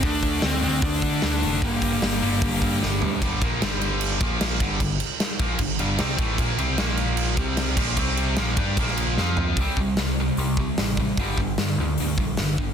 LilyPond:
<<
  \new Staff \with { instrumentName = "Lead electric guitar" } { \time 4/4 \key g \minor \tempo 4 = 151 d'4 c'8 c'8 d'2 | bes2. r4 | r1 | r1 |
r1 | r1 | r1 | r1 | }
  \new Staff \with { instrumentName = "Distorted electric guitar" } { \clef bass \time 4/4 \key g \minor <d a d'>4. <d a d'>2~ <d a d'>8 | <g, d g>4. <g, d g>2~ <g, d g>8 | <g, d g>8 <bes, f bes>8 <g, d g>4. <bes, f bes>4 <g, d g>8 | <g, d>8 r4 <bes, f bes>8 <g, d>8 <g, d g>8 <c g c'>8 <a, e a>8 |
<bes, f bes>8 <c g c'>8 <bes, f bes>4. <c g c'>4 <bes, f bes>8 | <c g c'>4 <bes, f bes>8 <g d' g'>8 <bes, f bes>4 <f c' f'>4 | <c g c'>8 <c g>8 <c g>8 <c g>8 <c g>8 <c g>8 <c g>8 <c g>8 | <g, d g>8 <g, d>8 <g, d>8 <g, d>8 <g, d>8 <g, d>8 <g, d>8 <g, d>8 | }
  \new Staff \with { instrumentName = "Picked electric bass" } { \clef bass \time 4/4 \key g \minor d,4 d,8 d,8 d,8 d8 d,8 f,,8 | g,,4 g,,8 g,,8 g,,8 g,8 g,,8 d,8 | g,,8 bes,,8 g,,4. bes,,4 g,,8 | g,,8 r4 bes,,8 g,,8 g,,8 c,8 a,,8 |
bes,,8 c,8 bes,,4. c,4 bes,,8 | c,4 bes,,8 g,8 bes,,4 f,4 | c,8 c,8 c,4 c,4 a,,4 | g,,8 g,,8 g,8 d,8 d,8 bes,,8 g,,4 | }
  \new DrumStaff \with { instrumentName = "Drums" } \drummode { \time 4/4 <hho bd>8 <hho bd>8 <hho sn>8 hho8 <hho bd>8 <hho bd>8 <hho sn>8 hho8 | <hho bd>8 <hho bd>8 <hho sn>8 hho8 <hho bd>8 <hho bd>8 sn8 tomfh8 | <cymc bd>8 <cymc bd>8 <cymc sn>8 cymc8 cymc8 <cymc bd>8 <cymc sn>8 <cymc bd>8 | <cymc bd>8 cymc8 <cymc sn>8 <cymc bd>8 <cymc bd>8 cymc8 <cymc sn>8 <cymc bd>8 |
<cymc bd>8 cymc8 <cymc sn>8 cymc8 cymc8 <cymc bd>8 <cymc sn>8 <cymc bd>8 | <cymc bd>8 cymc8 <cymc sn>8 <cymc bd>8 <cymc bd>16 sn16 cymc8 sn8 tomfh8 | <hho bd>8 bd8 <hho sn>4 hho8 bd8 <hho sn>8 bd8 | <hho bd>8 bd8 <hho sn>4 hho8 bd8 <hho sn>8 bd8 | }
>>